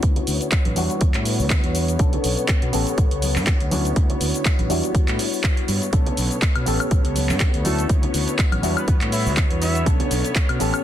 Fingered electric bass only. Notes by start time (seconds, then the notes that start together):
0.27 D2
0.66 A1
0.77 E2
1.01 E2
1.15 A2
1.39 D2
1.64 E2
1.99 B1
2.24 B1
2.62 B2
2.73 A1
2.98 A1
3.11 C#2
3.36 G2
3.60 D2
3.96 D2
4.21 D2
4.59 A1
4.70 E2
4.95 E2
5.08 A2
5.68 G2
5.93 B1
6.18 B1
6.56 B2
6.67 A1
6.91 A1
7.05 C#2
7.29 G2
7.54 D2
7.90 D2
8.14 D2
8.52 A1
8.63 E2
8.88 E2
9.02 A2
9.26 D2
9.51 E2
9.86 B1
10.11 B1
10.49 B2
10.60 A1